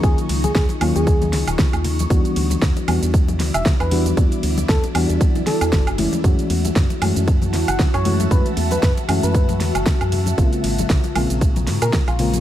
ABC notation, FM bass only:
X:1
M:4/4
L:1/16
Q:"Swing 16ths" 1/4=116
K:Gblyd
V:1 name="FM bass" clef=bass
E,, z D,,2 E,, z E,, E,,3 D,, E,,, z E,,3 | =E,, z =D,,2 E,, z E,, E,,3 D,, =E,,, z E,,3 | =E,, z =D,,2 E,, z E,, E,, z3 E,, G,,,3 z | G,, z _F,,2 G,, z G,, G,,3 F,, G,,, z G,,3 |
G,, z _F,,2 G,, z G,, G,,3 F,, G,,, z G,,3 | B,,, z A,,,2 B,,, z B,,, B,,,3 A,, B,, z B,,,3 |]